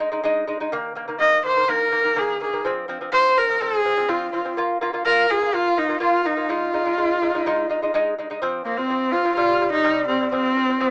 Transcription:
0.00 D#4
0.12 G#3 D#4
0.24 G#3 D#4
0.47 G#3 D#4
0.60 G#3 D#4
0.72 D#3 A#3
0.95 D#3 A#3
1.08 D#3 A#3
1.20 D#3 A#3 D#5
1.45 D#3 A#3 C5
1.56 D#3 A#3
1.68 D#3 A#3 A#4
1.91 D#3 A#3
2.04 D#3 A#3
2.16 D#3 A#3 G#4
2.40 D#3 A#3 G#4
2.53 D#3 A#3
2.65 F3 C4
2.88 F3 C4
3.01 F3 C4
3.12 F3 C4 C5
3.37 F3 C4 A#4
3.49 F3 C4
3.61 F3 C4 G#4
3.85 F3 C4
3.97 F3 C4
4.09 F3 C4 F4
4.32 F3 C4 F4
4.44 F3 C4
4.57 A#3 F4
4.81 A#3 F4
4.93 A#3 F4
5.06 A#3 F4 A#4
5.30 A#3 F4 G#4
5.42 A#3 F4
5.53 A#3 F4
5.77 A#3 D#4 F4
5.89 A#3 F4
6.00 A#3 F4
6.25 A#3 D#4 F4
6.37 A#3 F4
6.49 G#3 D#4 F4
6.73 G#3 D#4
6.85 G#3 D#4
6.98 G#3 D#4
7.22 G#3 D#4
7.34 G#3 D#4
7.46 G#3 D#4
7.69 G#3 D#4
7.82 G#3 D#4
7.94 G#3 D#4
8.18 G#3 D#4
8.30 G#3 D#4
8.42 F3 C4
8.64 F3 A#3 C4
8.77 F3 C4
8.90 F3 C4
9.12 F3 C4 F4
9.24 F3 C4
9.36 C3 G3 F4
9.61 C3 G3
9.72 C3 G3 D#4
9.84 C3 G3
10.08 C3 G3 C4
10.20 C3 G3
10.32 F3 C4
10.56 F3 C4
10.69 F3 C4
10.80 F3 A#3 C4

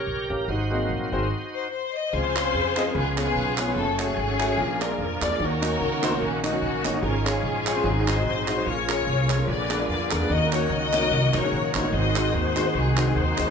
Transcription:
Already playing: G4 A#4 C#5
0.07 A#1
0.30 A1 C#4 G4 A#4 F5
0.48 G#1 G#2 D#4 F#4 C5
0.70 F#3 A#3 C4 F#4 G#4 D#5
0.89 A#1
1.12 G#1 C4 F#4 G#4 C5
1.54 C5
1.73 C5
1.95 D#5
2.13 C#2 C#3 F3 C4 C#4 F4 G#4 C5
2.36 C4 F4 G#4 C#5, clap
2.54 F2
2.76 C4 F4 G#4 D#5, clap
2.86 C4 F4 G#4 A#4
2.95 C#2 C#3 B3 F4 G#4
3.17 B3 F4 G#4 C#5, clap
3.26 B3 F4 G#4 C#5
3.35 B1
3.58 B3 F4 G#4 C#5, clap
3.68 B3 F4 G#4 C#5
3.76 F#1 F#3 A3 C#4 A4
3.99 A3 C#4 F#4 G#4 C#5, clap
4.17 G#1
4.40 A3 F#4 G#4 C#5, clap
4.48 A3 F#4 G#4 C#5
4.58 A#1 A#2 F3 A#3 D4
4.81 A#3 F4 G#4 A#4 D5, clap
4.90 A#3 F4 G#4 D5
4.98 F2 A#4
5.21 E2 A#3 F4 G#4 D5, clap
5.31 A#3 F4 G#4 D5
5.40 D#2 D#3 C#4 F#4 A#4
5.62 A#3 D#4 F#4 C#5, clap
5.80 C#2
6.02 A#3 D#4 F#4 C5, clap
6.11 A#3 D#4 F#4 C#5
6.21 A#1 A#3 C#4 F#4
6.43 A#3 C#4 D#4 F#4 D#5, clap
6.52 A#3 D#4 F#4 C#5
6.62 A#1
6.84 A1 A#3 D#4 F#4 C#5, clap
6.93 A#3 D#4 F#4 D#5
7.02 G#1 G#2 F3 G#3 C#4 F4 G#4 A#4
7.25 G#3 C#4 F4 G#4 C#5, clap
7.43 A#1
7.66 G#3 C#4 F4 C#5, clap
7.75 G#3 C#4 F4 C5
7.84 G#1 G#2 F#3 C4 D#4
8.07 G#3 D#4 F#4 C5, clap
8.16 G#3 D#4 F#4 D#5
8.25 A#1 C5
8.48 G#3 D#4 F#4 C5, clap
8.57 G#3 D#4 F#4 C5
8.65 A#1 A#2 F3 A#3 C#4 F4 G#4 C#5
8.88 G#3 C#4 F4 G#4 A#4 C#5, clap
9.07 C2
9.29 G#3 C#4 F4 C#5, clap
9.37 G#3 C#4 F4 A#4
9.47 A#1 A#2 D3 B3 F4 G#4 D5
9.69 A#3 D4 G#4 B4, clap
9.78 A#3 D4 G#4 D5
9.89 F2 D5
10.11 E2 A#3 D4 G#4 A#4 D5, clap
10.20 A#3 D4 G#4 B4
10.29 D#2 D#3 C#4 F#4 A#4 D#5
10.52 A#3 D#4 F#4 C#5, clap
10.70 C#2 F#4 A#4 D#5
10.93 A#3 D#4 F#4 C#5, clap
11.02 A#3 D#4 F#4 C#5
11.11 C2
11.34 A#1 A#3 D#4 F#4 A#4 C#5, clap
11.43 A#3 D#4 F#4 G#4
11.52 A#1
11.74 A1 A#3 D#4 F#4 C5 C#5, clap
11.84 A#3 D#4 F#4 C#5
11.92 G#1 G#2 G#3 C4 F#4 C5 D#5
12.16 G#3 D#4 F#4 C5, clap
12.34 D#2 D#4 F#4 C5
12.56 G#3 D#4 F#4 C5, clap
12.65 G#3 D#4 F#4 C5
12.74 C2 C4 D#4 G#4
12.97 G#3 D#4 F#4 C5, clap
13.06 G#3 D#4 F#4 C5
13.16 D#2 D#4 F#4 C5
13.38 D2 G#3 D#4 F#4 D#5, clap
13.47 G#3

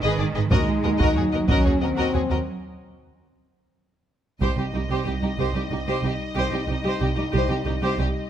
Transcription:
Already playing: D#3
0.02 G#1 G#4 B4 D#5
0.18 G#1 G#4 D5
0.35 G#1 G#4 B4 D#5
0.51 D#2 G#3 D#4 F#4 A#4 D#5, taiko
0.83 D#2 F#4 A#4 D#5
0.99 D#2 F#4 A#4 D#5, taiko
1.16 D#2 F#3 F#4 G#4 C#5
1.32 D#2 F#4 A#4 D#5
1.48 D#2 C#4 F#4 A#4 D#5, taiko
1.64 D#2 F#4 G#4 C#5
1.79 D#2 C4 F#4 A#4 D#5
1.96 D#2 F#4 A#4 D#5
2.13 D#2 F#4 G#4 C#5
2.30 D#2 F#4 A#4 D#5
4.40 C2 G3 D#4 G4 C5 D#5, taiko
4.57 C2 G4
4.73 C2 D#4 G4
4.90 C2 G4 C5
5.06 C2 G4
5.22 C2 D#4 G4
5.38 C2 G4 C5
5.54 C2 G4
5.70 C2 D#4 G4
5.87 C2 G4 C5
6.03 C2 G4
6.35 C2 G4 C5
6.51 C2 G4
6.67 C2 G4
6.71 D#4
6.83 C2 G4 C5
6.99 C2 G4
7.16 C2 D#4 G4
7.32 C2 G4 C5
7.48 C2 G4
7.65 C2 D#4 G4
7.81 C2 G4 C5
7.98 C2 G4

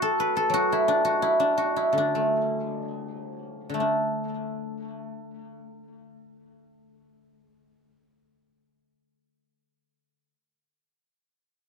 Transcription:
Already playing: F#3 D4 E4 F#4
0.02 A4
0.20 B4
0.37 A4
0.50 F#3
0.54 F#4
0.72 E4
0.88 D4
1.05 F#4
1.22 E4
1.40 D4
1.58 F#4
1.76 E4
1.93 D3
1.98 D4
2.15 A3
3.70 D3
3.74 A3
3.80 D4

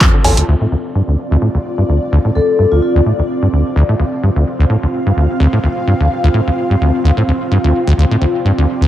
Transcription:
Already playing: C4 F4 A4
0.01 F2, kick, clap, closed hi-hat
0.14 D3
0.24 A1 E2, open hi-hat, cowbell
0.37 D2, closed hi-hat
0.48 D2 C4 F4 D5
0.61 A2
0.71 D2
0.95 G2
1.08 D2
1.31 D2
1.42 A2
1.55 D2
1.78 G2
1.89 D2
2.12 D2
2.25 A2
2.35 D2 A4
2.59 G2
2.72 D2 F4
2.82 F4
2.95 D2
3.06 A2
3.19 D2
3.42 G2
3.53 D2
3.76 D2
3.89 A2
3.99 D2
4.23 G2 F5
4.36 D2
4.59 D2
4.70 A2
4.83 D2
5.06 G2
5.17 D2
5.40 D2
5.53 A2
5.64 D2
5.87 G2
6.00 D2
6.23 D2
6.34 A2
6.47 D2
6.70 G2
6.81 D2
7.04 D2
7.17 A2
7.28 D2
7.51 G2
7.64 D2
7.87 D2
7.98 D2 D5
8.11 A2
8.21 D2
8.45 G2
8.58 D2
8.81 D2

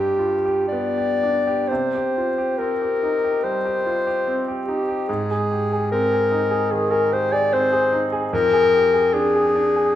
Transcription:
Already playing: G2 G4
0.19 F4
0.45 G4
0.68 D5
0.72 B3
0.97 G4
1.23 D4
1.47 G4
1.69 C3 C5
1.95 G4
2.17 F4
2.38 G4
2.58 C4 A#4
2.82 G4
3.03 D#4
3.24 G4
3.43 G3 C5
3.65 G4
3.86 F4
4.07 G4
4.27 C4
4.48 G4
4.67 D#4 G4
4.88 G4
5.08 G#2 G#4
5.31 G#4
5.52 G4
5.72 G#4
5.92 C4 A#4
6.13 G#4
6.32 D#4
6.51 G#4
6.71 D#3 G#4
6.91 G#4 A#4
7.12 G4 C5
7.32 G#4 D5
7.53 C4 C5
7.72 G#4
7.92 D#4
8.12 G#4
8.33 F2 A#4
8.53 G#4
8.74 G4
8.93 G#4
9.13 D4 G#4
9.35 G#4
9.55 D4
9.76 G#4

